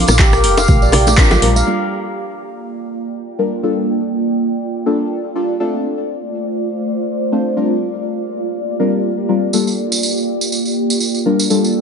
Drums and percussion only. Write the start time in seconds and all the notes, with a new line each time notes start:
0.08 cross-stick, tambourine, low bongo, muted conga
0.19 kick, clap
0.33 cross-stick, tambourine
0.44 open hi-hat, muted conga
0.57 tambourine, high bongo
0.68 kick, mid tom, tambourine, high conga
0.82 tambourine, muted conga, high conga
0.92 cross-stick, open hi-hat, mid tom, high bongo, low bongo
1.07 tambourine, high bongo, high conga
1.18 kick, clap, tambourine
1.31 tambourine, high bongo, high conga, low conga
1.42 open hi-hat, high conga
1.56 tambourine, muted conga
1.67 crash
9.53 tambourine
9.67 tambourine
9.92 tambourine
10.03 tambourine
10.17 tambourine
10.41 tambourine
10.52 tambourine
10.65 tambourine
10.90 tambourine
11.00 tambourine
11.14 tambourine
11.39 tambourine
11.50 tambourine
11.64 tambourine